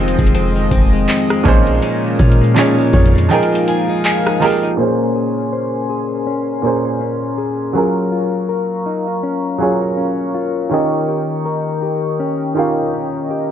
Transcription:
Already playing: 808-style bass F1, clean electric guitar F2 D#3 G#3 C4, analog synth pad F3 G#3 C4 D#5, grand piano F3 C4 G4 G#4 C5 D#5
0.08 closed hi-hat
0.19 808-style bass F1, clean electric guitar G#3, kick, closed hi-hat
0.27 closed hi-hat
0.34 clean electric guitar F2 C4, closed hi-hat
0.56 clean electric guitar D#3
0.71 808-style bass F1, clean electric guitar C4, kick, closed hi-hat
0.93 clean electric guitar G#3
1.08 clean electric guitar C4, clap, closed hi-hat
1.30 clean electric guitar G#3, cross-stick
1.44 808-style bass A#1, grand piano A#2 F3 C#4 D#4 G#4, clean electric guitar A#2, analog synth pad A#3 C#4 A#4, kick, closed hi-hat
1.48 grand piano C5
1.67 clean electric guitar G#3, closed hi-hat
1.82 clean electric guitar A#2 C#4, closed hi-hat
2.04 clean electric guitar D#3
2.19 808-style bass A#2, clean electric guitar C#4, kick, closed hi-hat
2.32 closed hi-hat
2.41 clean electric guitar G#3, closed hi-hat
2.54 grand piano A#2 F3 C#4 D#4 G#4, clean electric guitar C#4, clap, closed hi-hat
2.59 grand piano C#5
2.78 clean electric guitar G#3
2.93 808-style bass F2, clean electric guitar D#3, grand piano C#5, kick, closed hi-hat
3.06 closed hi-hat
3.15 clean electric guitar G#3, closed hi-hat
3.29 grand piano F3 D#4 G#4 D#5 G5, clean electric guitar F3 G#4, analog synth pad F3 D#4 A#4 F5, closed hi-hat
3.33 grand piano A#4
3.43 closed hi-hat
3.52 clean electric guitar A#3, closed hi-hat
3.68 clean electric guitar G#4, grand piano G#5, closed hi-hat
3.89 clean electric guitar D#4
4.05 clean electric guitar G#4, grand piano G#5, clap, closed hi-hat
4.26 clean electric guitar D#4, cross-stick
4.40 grand piano F3 D#4 G4 G#4 A#5, clean electric guitar A#3, open hi-hat
4.44 grand piano A#4
4.63 clean electric guitar D#4
4.77 grand piano A#2 A#3 C#4 G#4, clean electric guitar A#3 C5, analog synth pad C#4 A#4 G#5 C6
4.81 grand piano C5
5.16 clean electric guitar G#4
5.53 clean electric guitar C5
5.90 clean electric guitar G#4
6.27 clean electric guitar C#4
6.62 grand piano A#2 A#3 C#4 G#4, clean electric guitar A#4
6.66 grand piano C5
6.85 clean electric guitar C5
7.01 clean electric guitar C#4
7.38 clean electric guitar G#4
7.73 grand piano F#3 C#4 F4 G#4, clean electric guitar F#3 A#4, analog synth pad F5 A#5 C#6
7.78 grand piano A#4
8.12 clean electric guitar F4
8.49 clean electric guitar A#4
8.86 clean electric guitar D#4
9.08 clean electric guitar F4
9.23 clean electric guitar C#4
9.58 grand piano F#3 C#4 F4 G#4, clean electric guitar G#4
9.63 grand piano C#5
9.82 clean electric guitar A#4
9.97 clean electric guitar C#4
10.34 clean electric guitar F4
10.69 grand piano D#3 C#4 F4 G4, clean electric guitar D#3 A#4, analog synth pad D#5 G5
10.74 grand piano D#5
11.09 clean electric guitar G4
11.46 clean electric guitar A#4
11.83 clean electric guitar G4
12.20 clean electric guitar C#4
12.54 grand piano D#3 C#4 F4 G4, clean electric guitar A#4
12.59 grand piano F5
12.94 clean electric guitar C#4
13.31 clean electric guitar G4

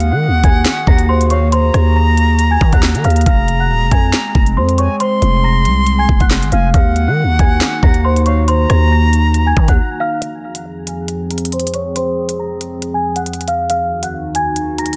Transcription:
Already playing: 808-style bass D#2, ambient pad D#3 A#3 F#4 G#4, flute F#5, celesta F6
0.00 closed hi-hat
0.12 808-style bass D#3, celesta F#5 F#6
0.28 808-style bass D#2
0.44 808-style bass D#2, celesta G#5 G#6, kick, closed hi-hat
0.65 snare, clap, closed hi-hat
0.87 808-style bass D#2, celesta A#5 A#6, kick
0.98 closed hi-hat
1.09 celesta C5 C6
1.21 closed hi-hat
1.30 celesta C#5 C#6, flute F5, closed hi-hat
1.52 celesta C5 C6, flute A#5, closed hi-hat
1.74 808-style bass D#2, cross-stick, closed hi-hat
1.96 celesta A#5 A#6
2.17 closed hi-hat
2.39 closed hi-hat
2.51 celesta G#5 G#6
2.61 808-style bass D#3, kick
2.72 808-style bass D#2, celesta F#5 F#6, kick, closed hi-hat
2.83 snare, clap
2.94 808-style bass D#3, closed hi-hat
3.04 808-style bass D#2, celesta F5 F6, closed hi-hat, open hi-hat
3.10 closed hi-hat
3.16 closed hi-hat
3.21 closed hi-hat
3.26 808-style bass F1, ambient pad G#3 C4, celesta F5 F6, flute A#5, kick, closed hi-hat
3.48 closed hi-hat
3.60 celesta F#5 F#6
3.70 808-style bass D#1
3.81 808-style bass F1
3.91 808-style bass F2, celesta G#5 G#6, kick, closed hi-hat
4.13 snare, clap, closed hi-hat
4.35 808-style bass F1, celesta A#5 A#6, kick
4.46 closed hi-hat
4.57 808-style bass F2, celesta C5 C6
4.69 closed hi-hat
4.78 celesta C#5 C#6, flute G#5, closed hi-hat
5.00 celesta C5 C6, flute C6, closed hi-hat
5.22 808-style bass F1, closed hi-hat
5.44 celesta A#5 A#6
5.65 808-style bass C2, closed hi-hat
5.87 closed hi-hat
5.99 celesta G#5 G#6
6.09 808-style bass F1, kick
6.20 808-style bass F1, celesta F#5 F#6, kick, closed hi-hat
6.31 snare, clap
6.42 808-style bass G#1, closed hi-hat
6.52 808-style bass F1, celesta F5 F6, flute G#5, closed hi-hat
6.74 808-style bass D#2, ambient pad D#3 A#3 D#4 F#4, celesta F5 F6, flute F#5, kick, closed hi-hat
6.96 closed hi-hat
7.07 808-style bass D#3, celesta F#5 F#6
7.23 808-style bass D#2
7.39 808-style bass D#2, celesta G#5 G#6, kick, closed hi-hat
7.60 snare, clap, closed hi-hat
7.83 808-style bass D#2, celesta A#5 A#6, kick
7.94 closed hi-hat
8.05 celesta C5 C6
8.16 closed hi-hat
8.26 celesta C#5 C#6, flute F5, closed hi-hat
8.48 celesta C5 C6, flute A#5, closed hi-hat
8.70 808-style bass D#2, cross-stick, closed hi-hat
8.92 celesta A#5 A#6
9.13 closed hi-hat
9.34 closed hi-hat
9.47 celesta G#5 G#6
9.57 808-style bass D#3, kick
9.68 808-style bass D#2, celesta F#5 F#6, kick, closed hi-hat
10.00 celesta F5 F6
10.22 ambient pad F2 F3 C4 G#4, closed hi-hat
10.55 celesta F#5 F#6, closed hi-hat
10.87 celesta G#5 G#6, closed hi-hat
11.08 closed hi-hat
11.31 celesta A#5 A#6, closed hi-hat
11.38 closed hi-hat
11.45 closed hi-hat
11.52 celesta C5 C6, closed hi-hat
11.60 closed hi-hat
11.67 closed hi-hat
11.74 celesta C#5 C#6, closed hi-hat
11.96 celesta C5 C6, closed hi-hat
12.29 closed hi-hat
12.39 celesta A#5 A#6
12.61 closed hi-hat
12.82 closed hi-hat
12.94 celesta G#5 G#6
13.16 celesta F#5 F#6, closed hi-hat
13.26 closed hi-hat
13.33 closed hi-hat
13.41 closed hi-hat
13.48 celesta F5 F6, closed hi-hat
13.70 ambient pad D#2 D#3 D#4 F#4, celesta F5 F6, closed hi-hat
14.03 celesta F#5 F#6, closed hi-hat
14.35 celesta G#5 G#6, closed hi-hat
14.56 closed hi-hat
14.78 celesta A#5 A#6, closed hi-hat
14.86 closed hi-hat
14.93 closed hi-hat

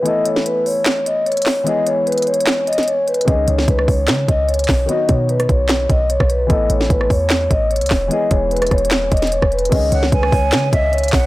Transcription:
0.02 grand piano E3 A3 B3 E4, vibraphone D#5, closed hi-hat
0.08 grand piano A4
0.25 vibraphone C#5, closed hi-hat
0.36 snare
0.46 vibraphone B4, closed hi-hat
0.66 vibraphone C#5, open hi-hat
0.86 snare, clap, closed hi-hat
1.06 vibraphone D#5, closed hi-hat
1.26 vibraphone C#5, closed hi-hat
1.32 closed hi-hat
1.37 closed hi-hat
1.42 closed hi-hat
1.46 snare, clap, open hi-hat
1.64 grand piano E3 G#3 B3 E4, vibraphone D#5, closed hi-hat
1.69 grand piano G#4
1.87 vibraphone C#5, closed hi-hat
2.07 vibraphone B4, closed hi-hat
2.12 closed hi-hat
2.18 closed hi-hat
2.22 closed hi-hat
2.27 vibraphone C#5, closed hi-hat
2.34 closed hi-hat
2.40 closed hi-hat
2.47 snare, clap, closed hi-hat
2.67 vibraphone D#5, closed hi-hat
2.73 closed hi-hat
2.78 snare, closed hi-hat
2.83 closed hi-hat
2.87 vibraphone C#5, closed hi-hat
3.08 vibraphone B4, closed hi-hat, open hi-hat
3.14 closed hi-hat
3.21 closed hi-hat
3.25 808-style bass C#2, grand piano D#3 G#3 C#4 D#4, vibraphone D#5, kick, closed hi-hat
3.30 grand piano G#4
3.48 808-style bass C#2, vibraphone C#5, closed hi-hat
3.59 snare
3.68 808-style bass C#2, vibraphone B4, kick, closed hi-hat
3.79 cross-stick
3.88 808-style bass C#2, vibraphone C#5, kick, open hi-hat
4.08 808-style bass C#3, snare, clap, closed hi-hat
4.28 808-style bass C#2, vibraphone D#5, kick, closed hi-hat
4.48 vibraphone C#5, closed hi-hat
4.54 closed hi-hat
4.59 closed hi-hat
4.64 closed hi-hat
4.68 808-style bass B1, kick, snare, clap
4.86 grand piano D#3 F#3 B3 D#4, vibraphone D#5, closed hi-hat
4.91 grand piano F#4
5.09 808-style bass B2, vibraphone C#5, kick, closed hi-hat
5.29 vibraphone B4, closed hi-hat
5.40 cross-stick, closed hi-hat
5.49 808-style bass B1, vibraphone C#5, kick, closed hi-hat
5.69 snare, clap, closed hi-hat
5.89 808-style bass B1, vibraphone D#5, kick, closed hi-hat
6.10 vibraphone C#5, closed hi-hat
6.20 808-style bass B1, kick, cross-stick
6.30 vibraphone B4, closed hi-hat
6.47 808-style bass A1, grand piano E3 A3 B3 E4, vibraphone D#5, kick, closed hi-hat
6.52 grand piano A4
6.70 808-style bass A1, vibraphone C#5, closed hi-hat
6.81 snare
6.90 808-style bass A1, vibraphone B4, kick, closed hi-hat
7.01 cross-stick
7.10 808-style bass E2, vibraphone C#5, kick, open hi-hat
7.30 snare, clap, closed hi-hat
7.51 808-style bass A1, vibraphone D#5, kick, closed hi-hat
7.71 vibraphone C#5, closed hi-hat
7.76 closed hi-hat
7.81 808-style bass C#2, closed hi-hat
7.86 closed hi-hat
7.90 808-style bass E1, kick, snare, clap, open hi-hat
8.08 grand piano E3 G#3 B3 E4, vibraphone D#5, closed hi-hat
8.13 grand piano G#4
8.31 808-style bass E1, vibraphone C#5, kick, closed hi-hat
8.51 vibraphone B4, closed hi-hat
8.57 closed hi-hat
8.62 cross-stick, closed hi-hat
8.67 closed hi-hat
8.71 808-style bass E1, vibraphone C#5, kick, cross-stick, closed hi-hat
8.78 closed hi-hat
8.85 closed hi-hat
8.91 snare, clap, closed hi-hat
9.12 808-style bass E1, vibraphone D#5, kick, closed hi-hat
9.17 closed hi-hat
9.22 snare, closed hi-hat
9.27 closed hi-hat
9.32 vibraphone C#5, closed hi-hat
9.42 808-style bass E1, kick, cross-stick
9.52 vibraphone B4, closed hi-hat, open hi-hat
9.59 closed hi-hat
9.65 closed hi-hat
9.69 808-style bass C#2, grand piano D#3 G#3 C#4, vibraphone D#5, kick, closed hi-hat, crash
9.75 grand piano G#4
9.92 808-style bass C#2, vibraphone C#5, flute F#5, closed hi-hat
10.03 snare
10.12 808-style bass C#2, vibraphone B4, flute G#5, kick, closed hi-hat
10.23 cross-stick
10.32 808-style bass C#2, vibraphone C#5, kick, open hi-hat
10.52 808-style bass C#3, snare, clap, closed hi-hat
10.72 808-style bass C#2, vibraphone D#5, flute E5, kick, closed hi-hat
10.93 vibraphone C#5, closed hi-hat
10.98 closed hi-hat
11.04 closed hi-hat
11.08 closed hi-hat
11.13 808-style bass B1, flute F#5, kick, snare, clap, open hi-hat

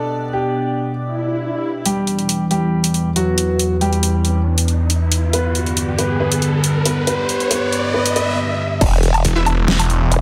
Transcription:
Already playing: ambient pad B2 B3 D4 G4 D5, grand piano A4
0.33 grand piano G4
0.99 swell
1.85 ambient pad E2 E3 B3 E4 B4, grand piano G3 G4, closed hi-hat, riser
2.07 closed hi-hat
2.19 closed hi-hat
2.29 closed hi-hat
2.51 grand piano G3 G4, closed hi-hat
2.84 closed hi-hat
2.94 closed hi-hat
3.16 grand piano F#3 F#4, closed hi-hat
3.38 open hi-hat
3.59 closed hi-hat
3.81 grand piano G3 G4, closed hi-hat
3.93 closed hi-hat
4.03 closed hi-hat
4.25 closed hi-hat
4.58 closed hi-hat
4.68 closed hi-hat
4.90 closed hi-hat
5.12 open hi-hat
5.33 ambient pad G2 D3 B3 G4 D5, grand piano B3 B4, closed hi-hat
5.55 closed hi-hat
5.66 closed hi-hat
5.77 closed hi-hat
5.99 grand piano B3 B4, closed hi-hat
6.20 grand piano B3 B4
6.32 closed hi-hat
6.42 closed hi-hat
6.64 closed hi-hat
6.85 grand piano B3 B4, open hi-hat
7.07 grand piano B3 B4, closed hi-hat
7.29 closed hi-hat
7.40 closed hi-hat
7.51 grand piano B3 B4, closed hi-hat
7.72 closed hi-hat
7.94 grand piano B3 B4
8.06 closed hi-hat
8.16 grand piano B3 B4, closed hi-hat
8.81 wobble bass E1, ambient pad E3 B3 E4, kick, closed hi-hat, crash, low woodblock
9.03 closed hi-hat
9.14 closed hi-hat, low woodblock
9.25 detuned saw bass E1, closed hi-hat
9.36 synth stab E4 B4 E5
9.46 closed hi-hat, low woodblock
9.68 detuned saw bass E1, snare
9.79 closed hi-hat, low woodblock
9.90 closed hi-hat
10.12 wobble bass E1, closed hi-hat

